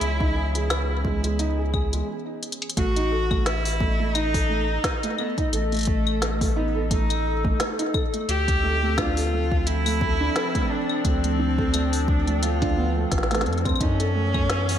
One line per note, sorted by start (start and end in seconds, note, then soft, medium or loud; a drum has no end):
0.00 2.02 C#2 loud
0.00 2.08 E3 medium
0.00 0.15 G#3 medium
0.00 2.08 B3 medium
0.00 2.08 C#4 medium
0.00 2.08 E4 loud
0.00 2.08 G#4 medium
0.00 2.08 C#5 medium
0.00 closed hi-hat medium
0.21 0.35 D#4 loud
0.21 kick loud
0.36 0.54 G#4 medium
0.55 0.66 G#3 medium
0.55 closed hi-hat medium
0.70 snare loud
0.70 closed hi-hat medium
0.70 claves medium
1.05 1.18 G#3 medium
1.05 kick loud
1.24 1.34 G#3 medium
1.24 closed hi-hat medium
1.39 1.58 D#4 loud
1.39 closed hi-hat soft
1.59 1.72 G#4 medium
1.74 1.87 G#4 medium
1.74 kick loud
1.74 claves medium
1.93 2.07 G#3 medium
1.93 closed hi-hat medium
2.43 closed hi-hat medium
2.52 closed hi-hat medium
2.62 closed hi-hat medium
2.70 closed hi-hat medium
2.77 4.78 A1 loud
2.77 2.90 A3 medium
2.77 3.48 F#4 loud
2.77 kick loud
2.77 closed hi-hat medium
2.96 3.11 D#4 loud
2.96 closed hi-hat medium
3.09 3.30 A4 medium
3.09 8.29 D#5 medium
3.28 3.41 A3 medium
3.28 14.79 A4 medium
3.28 kick loud
3.28 claves medium
3.46 4.17 E4 loud
3.46 snare loud
3.46 closed hi-hat medium
3.65 open hi-hat medium
3.81 3.94 A3 medium
3.81 kick loud
4.00 4.10 A3 medium
4.15 4.33 D#4 loud
4.15 5.18 D#4 loud
4.15 closed hi-hat medium
4.15 claves medium
4.34 4.49 A4 medium
4.34 kick loud
4.34 open hi-hat medium
4.49 4.63 A3 medium
4.84 kick loud
4.84 snare loud
4.84 closed hi-hat medium
5.03 5.14 A3 medium
5.03 closed hi-hat medium
5.18 5.32 A3 medium
5.18 5.34 B3 medium
5.18 claves medium
5.38 5.52 D#4 loud
5.38 kick loud
5.38 closed hi-hat soft
5.53 7.54 A1 loud
5.53 6.58 A3 loud
5.53 5.71 A4 medium
5.53 closed hi-hat medium
5.72 5.83 A3 medium
5.72 closed hi-hat soft
5.74 closed hi-hat soft
5.77 closed hi-hat soft
5.79 closed hi-hat soft
5.81 closed hi-hat soft
5.83 closed hi-hat soft
5.85 kick loud
5.85 closed hi-hat soft
6.07 claves medium
6.22 6.35 A3 medium
6.22 snare loud
6.22 closed hi-hat medium
6.41 6.52 A3 medium
6.41 kick loud
6.41 open hi-hat medium
6.56 6.90 B3 medium
6.56 6.75 D#4 loud
6.76 6.90 A4 medium
6.91 7.04 A3 medium
6.91 7.56 D#4 medium
6.91 kick loud
6.91 closed hi-hat medium
7.10 closed hi-hat medium
7.10 claves medium
7.45 7.55 A3 medium
7.45 kick loud
7.60 7.73 A3 medium
7.60 snare loud
7.60 closed hi-hat medium
7.79 7.94 D#4 loud
7.79 closed hi-hat medium
7.94 8.13 A4 medium
7.94 kick loud
7.94 claves medium
8.14 8.24 A3 medium
8.14 closed hi-hat soft
8.29 10.30 D2 loud
8.29 13.81 C4 medium
8.29 8.99 G4 loud
8.29 closed hi-hat medium
8.48 kick loud
8.48 closed hi-hat medium
8.55 13.81 D4 medium
8.63 8.77 A3 medium
8.83 13.80 F3 medium
8.83 8.93 A3 medium
8.98 9.16 D4 loud
8.98 9.68 F4 loud
8.98 kick loud
8.98 snare loud
8.98 closed hi-hat medium
8.98 claves medium
9.17 9.31 A4 medium
9.17 open hi-hat medium
9.32 9.46 A3 medium
9.52 kick loud
9.67 10.72 E4 loud
9.67 closed hi-hat medium
9.86 9.97 A3 medium
9.86 open hi-hat medium
9.86 claves medium
9.99 10.15 A3 medium
9.99 13.80 D5 medium
9.99 kick loud
10.20 10.35 D4 loud
10.36 10.54 A4 medium
10.36 snare loud
10.36 closed hi-hat medium
10.55 10.65 A3 medium
10.55 kick loud
10.55 closed hi-hat medium
10.70 11.04 D4 loud
10.90 claves medium
11.05 13.06 D2 loud
11.05 11.18 A3 medium
11.05 12.10 C4 loud
11.05 kick loud
11.05 closed hi-hat medium
11.24 11.34 A3 medium
11.24 closed hi-hat soft
11.39 11.57 D4 loud
11.58 11.73 A4 medium
11.58 kick loud
11.74 11.87 A3 medium
11.74 closed hi-hat medium
11.74 claves medium
11.93 open hi-hat medium
12.08 12.44 D4 medium
12.08 kick loud
12.27 12.38 A3 medium
12.27 closed hi-hat soft
12.43 12.56 A3 medium
12.43 13.12 F4 loud
12.43 closed hi-hat medium
12.62 12.76 D4 loud
12.62 kick loud
12.62 closed hi-hat soft
12.77 12.90 B3 loud
12.96 13.11 A3 medium
13.12 13.48 A1 medium
13.12 kick loud
13.12 snare medium
13.12 closed hi-hat medium
13.18 snare medium
13.23 snare medium
13.31 13.41 A3 medium
13.31 snare medium
13.31 closed hi-hat soft
13.35 snare medium
13.35 closed hi-hat soft
13.41 snare loud
13.41 closed hi-hat soft
13.46 13.73 F2 loud
13.46 13.64 A3 medium
13.46 closed hi-hat soft
13.53 closed hi-hat soft
13.58 closed hi-hat soft
13.65 13.80 C4 medium
13.65 kick loud
13.65 closed hi-hat soft
13.65 claves soft
13.69 claves soft
13.76 claves medium
13.81 14.79 F#2 loud
13.81 14.79 B3 medium
13.81 14.79 C#4 loud
13.81 13.99 D#4 loud
13.81 kick loud
13.81 closed hi-hat medium
14.00 14.79 E3 medium
14.00 14.14 A4 medium
14.00 closed hi-hat soft
14.15 14.28 A3 medium
14.21 14.79 C#4 medium
14.34 14.45 A3 medium
14.34 kick loud
14.34 claves medium
14.50 snare loud
14.50 closed hi-hat medium
14.69 open hi-hat medium